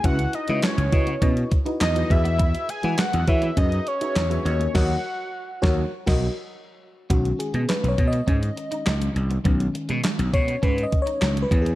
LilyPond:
<<
  \new Staff \with { instrumentName = "Analog synth lead" } { \time 4/4 \key b \major \tempo 4 = 102 fis''8 dis''8 cis''4. r8 dis''8 e''8~ | e''8 gis''8 fis''8 e''8 dis''8 cis''4 cis''8 | fis''4. r2 r8 | r1 |
r1 | }
  \new Staff \with { instrumentName = "FM electric piano" } { \time 4/4 \key b \major <e' fis' b' e''>8 r16 <e' fis' b' e''>8 r16 <e' fis' b' dis''>16 r16 <e' fis' b' dis''>8 r16 <e' fis' b' dis''>16 r16 <e' fis' b' dis''>16 <fis' gis' b' e''>8~ | <fis' gis' b' e''>8 r16 <fis' gis' b' fis''>8 r16 <fis' gis' b' cis''>16 r16 <fis' gis' b' dis''>8 r16 <fis' gis' b' e''>16 r16 <fis' gis' b' e''>16 <fis' ais' cis'' dis''>8 | <fis' ais' cis'' dis''>8 r4 <fis' ais' cis'' fis''>8 r16 <fis' ais' dis''>8 r4 r16 | fis'8 gis'8 \tuplet 3/2 { b'8 cis''8 dis''8~ } dis''4 r4 |
r4. cis''8 \tuplet 3/2 { b'8 dis''8 cis''8~ cis''8 b'8 gis'8 } | }
  \new Staff \with { instrumentName = "FM electric piano" } { \clef bass \time 4/4 \key b \major r1 | r1 | r1 | <dis gis cis'>1 |
<dis gis cis'>2.~ <dis gis cis'>8 r8 | }
  \new Staff \with { instrumentName = "Clean electric guitar" } { \time 4/4 \key b \major cis'16 r8 gis16 gis16 r8 b16 cis'16 r8 dis'16 dis'16 r8 b16 | e'16 r8 gis16 gis16 r8 b16 cis'16 r8 dis'16 dis'16 r8 ais16 | r1 | b16 r8 gis16 gis16 r8 b16 cis'16 r8 dis'16 dis'16 r8 b16 |
b16 r8 gis16 gis16 r8 b16 cis'16 r8 dis'16 dis'16 r8 b16 | }
  \new Staff \with { instrumentName = "Slap bass" } { \clef bass \time 4/4 \key b \major cis,8 r16 cis16 r16 cis,16 cis8 b,8 r8 e,8 e,8~ | e,8 r16 e16 r16 e,16 e8 fis,8 r8 e,8 dis,8 | dis,8 r4 dis,8 r16 b,,8 r4 r16 | b,,8 r16 b,16 r16 b,,16 b,8 gis,8 r8 cis,8 c,8 |
b,,8 r16 b,16 r16 b,,16 b,8 gis,8 r8 cis,8 e,8 | }
  \new DrumStaff \with { instrumentName = "Drums" } \drummode { \time 4/4 <hh bd>16 hh16 hh16 hh16 <hc hh sn>16 hh16 <hh bd>16 hh16 <hh bd>16 hh16 <hh bd>16 hh16 <hc hh sn>16 hh16 <hh bd>16 hh16 | <hh bd>16 hh16 hh16 hh16 <hc hh sn>16 hh16 <hh bd>16 hh16 <hh bd>16 hh16 hh16 hh16 <hc hh sn>16 hh16 hh16 hh16 | <cymc bd sn>4 r8 <bd sn>8 r16 <cymc bd sn>8. r4 | <hh bd>16 hh16 hh16 hh16 <hc hh sn>16 hh16 <hh bd>16 hh16 <hh bd>16 hh16 hh16 hh16 <hc hh sn>16 hh16 hh16 hh16 |
<hh bd>16 hh16 hh16 hh16 <hc hh sn>16 hh16 <hh bd>16 hh16 <hh bd>16 hh16 <hh bd>16 hh16 <hc hh sn>16 hh16 <hh bd>16 hh16 | }
>>